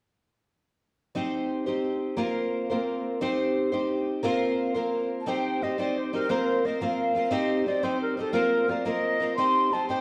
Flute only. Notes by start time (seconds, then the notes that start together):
5.21 A5
5.29 G5
5.63 D#5
5.79 D5
5.98 C5
6.14 A#4
6.30 C5
6.65 D#5
6.82 F5
7.26 F5
7.33 D#5
7.66 D5
7.83 C5
8.02 A#4
8.19 A4
8.33 A#4
8.70 D5
8.85 D#5
9.36 C6
9.73 A5
9.89 G5